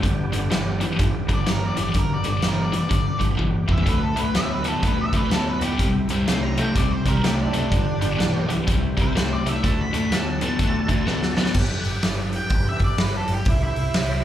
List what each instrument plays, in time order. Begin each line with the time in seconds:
0.02 picked electric bass G1, distorted electric guitar G2 D3, tonewheel organ B3 D4 G4, kick, closed hi-hat
0.33 picked electric bass G1, distorted electric guitar G2 D3, closed hi-hat
0.50 picked electric bass G1, distorted electric guitar G2 E3, snare, closed hi-hat
0.80 distorted electric guitar G2 E3, closed hi-hat
0.99 picked electric bass G1, distorted electric guitar G2 D3, kick, closed hi-hat
1.29 picked electric bass G1, distorted electric guitar G2 D3, kick, closed hi-hat
1.34 lead electric guitar D5
1.46 picked electric bass G1, distorted electric guitar G2 E3, lead electric guitar A#4, snare, closed hi-hat
1.67 lead electric guitar D5
1.77 picked electric bass G1, distorted electric guitar G2 E3, closed hi-hat
1.82 lead electric guitar D5
1.94 picked electric bass G1, distorted electric guitar G2 D3, kick, closed hi-hat
1.98 lead electric guitar A#4
2.13 lead electric guitar D5
2.24 picked electric bass G1, distorted electric guitar G2 D3, closed hi-hat
2.30 lead electric guitar D5
2.42 picked electric bass G1, distorted electric guitar G2 E3, snare, closed hi-hat
2.48 lead electric guitar A#4
2.63 lead electric guitar D5
2.72 distorted electric guitar G2 E3, closed hi-hat
2.78 lead electric guitar D5
2.89 picked electric bass G1, distorted electric guitar G2 D3, kick, closed hi-hat
3.19 picked electric bass G1, distorted electric guitar G2 D3, kick, closed hi-hat
3.37 picked electric bass G1, distorted electric guitar G2 E3, kick
3.68 picked electric bass E2, distorted electric guitar G2 E3, kick
3.72 lead electric guitar E5
3.78 floor tom
3.85 picked electric bass D2, distorted electric guitar D3 A3, tonewheel organ A3 D4 F#4, lead electric guitar B4, kick, closed hi-hat
4.03 lead electric guitar A4
4.16 picked electric bass D2, distorted electric guitar D3 A3, lead electric guitar B4, closed hi-hat
4.34 picked electric bass D2, distorted electric guitar D3 B3, lead electric guitar E5, snare, closed hi-hat
4.53 lead electric guitar B4
4.64 distorted electric guitar D3 B3, lead electric guitar A4, closed hi-hat
4.83 picked electric bass D2, distorted electric guitar D3 A3, lead electric guitar B4, kick, closed hi-hat
5.01 lead electric guitar E5
5.13 picked electric bass D2, distorted electric guitar D3 A3, lead electric guitar B4, kick, closed hi-hat
5.31 picked electric bass D2, distorted electric guitar D3 B3, lead electric guitar A4, snare, closed hi-hat
5.49 lead electric guitar B4
5.61 picked electric bass D2, distorted electric guitar D3 B3, lead electric guitar G4, closed hi-hat
5.78 picked electric bass C2, distorted electric guitar C3 G3, tonewheel organ C4 E4 G4, kick, closed hi-hat
6.08 picked electric bass C2, distorted electric guitar C3 G3, closed hi-hat
6.27 picked electric bass C2, distorted electric guitar C3 A3, lead electric guitar C6, snare, closed hi-hat
6.43 lead electric guitar A#5
6.57 distorted electric guitar C3 A3, lead electric guitar G5, closed hi-hat
6.75 picked electric bass C2, distorted electric guitar C3 G3, lead electric guitar D5, kick, closed hi-hat
6.92 lead electric guitar C5
7.06 picked electric bass C2, distorted electric guitar C3 G3, lead electric guitar A#4, kick, closed hi-hat
7.24 picked electric bass C2, distorted electric guitar C3 A3, lead electric guitar G4, snare, closed hi-hat
7.42 lead electric guitar D4
7.53 picked electric bass C2, distorted electric guitar C3 A3, lead electric guitar D4, closed hi-hat
7.71 picked electric bass G1, distorted electric guitar G2 D3, tonewheel organ B3 D4 G4, kick, closed hi-hat
8.01 picked electric bass G1, distorted electric guitar G2 D3, closed hi-hat
8.18 picked electric bass B1, distorted electric guitar G2 E3, snare, closed hi-hat
8.49 distorted electric guitar G2 E3, closed hi-hat
8.67 picked electric bass C2, distorted electric guitar C3 G3, tonewheel organ C4 E4 G4, kick, closed hi-hat
8.97 picked electric bass C2, distorted electric guitar C3 G3, kick, closed hi-hat
9.02 lead electric guitar C5
9.16 picked electric bass C2, distorted electric guitar C3 A3, snare, closed hi-hat
9.33 lead electric guitar D5
9.45 picked electric bass C2, distorted electric guitar C3 A3, lead electric guitar E5, closed hi-hat
9.63 picked electric bass D2, distorted electric guitar D3 A3, tonewheel organ D4 F#4 A4, lead electric guitar A5, kick, closed hi-hat
9.81 lead electric guitar B5
9.93 picked electric bass D2, distorted electric guitar D3 A3, closed hi-hat
10.11 picked electric bass D2, distorted electric guitar D3 B3, lead electric guitar A5, snare, closed hi-hat
10.41 distorted electric guitar D3 B3, closed hi-hat
10.59 picked electric bass D2, distorted electric guitar D3 A3, kick, closed hi-hat
10.89 picked electric bass D2, distorted electric guitar D3 A3, kick, closed hi-hat
11.07 picked electric bass D2, distorted electric guitar D3 B3, snare
11.23 snare
11.37 picked electric bass D2, distorted electric guitar D3 B3, snare
11.46 snare
11.54 picked electric bass G1, tonewheel organ D4 G4 B4, kick, crash
11.85 picked electric bass G1, open hi-hat
12.02 picked electric bass G1, snare, open hi-hat
12.32 lead electric guitar G5, open hi-hat
12.50 picked electric bass G1, kick, open hi-hat
12.69 lead electric guitar E5
12.79 picked electric bass G1, kick, open hi-hat
12.84 lead electric guitar D5
12.98 picked electric bass G1, lead electric guitar B4, snare, open hi-hat
13.17 lead electric guitar A4
13.28 picked electric bass G1, open hi-hat
13.34 lead electric guitar G4
13.45 picked electric bass C2, tonewheel organ E4 G4 C5, lead electric guitar E4, kick, open hi-hat
13.64 lead electric guitar E4
13.76 picked electric bass C2, open hi-hat
13.94 picked electric bass C2, snare, open hi-hat